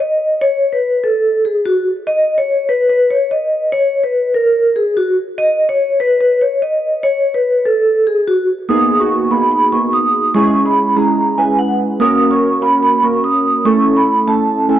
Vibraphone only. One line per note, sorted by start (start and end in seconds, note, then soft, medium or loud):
0.00 0.39 D#5 medium
0.41 0.71 C#5 loud
0.72 1.02 B4 medium
1.04 1.42 A4 medium
1.45 1.63 G#4 medium
1.66 1.84 F#4 medium
2.07 2.36 D#5 loud
2.38 2.67 C#5 medium
2.69 2.87 B4 medium
2.89 3.08 B4 medium
3.10 3.29 C#5 medium
3.31 3.70 D#5 medium
3.72 4.02 C#5 loud
4.04 4.33 B4 medium
4.34 4.73 A#4 medium
4.76 4.94 G#4 medium
4.97 5.15 F#4 medium
5.38 5.67 D#5 loud
5.69 5.98 C#5 medium
6.00 6.18 B4 medium
6.21 6.39 B4 medium
6.41 6.60 C#5 medium
6.62 7.01 D#5 medium
7.03 7.33 C#5 loud
7.34 7.64 B4 medium
7.65 8.04 A4 medium
8.07 8.25 G#4 medium
8.27 8.46 F#4 medium
8.69 8.98 D#6 loud
9.00 9.29 C#6 medium
9.31 9.49 B5 medium
9.52 9.70 B5 medium
9.72 9.91 C#6 medium
9.93 10.32 D#6 medium
10.35 10.64 C#6 loud
10.66 10.95 B5 medium
10.96 11.35 A#5 medium
11.38 11.56 G#5 medium
11.59 11.77 F#5 medium
12.00 12.29 D#6 loud
12.31 12.60 C#6 medium
12.62 12.80 B5 medium
12.83 13.01 B5 medium
13.03 13.22 C#6 medium
13.24 13.63 D#6 medium
13.65 13.95 C#6 loud
13.97 14.26 B5 medium
14.28 14.67 A5 medium
14.69 14.79 G#5 medium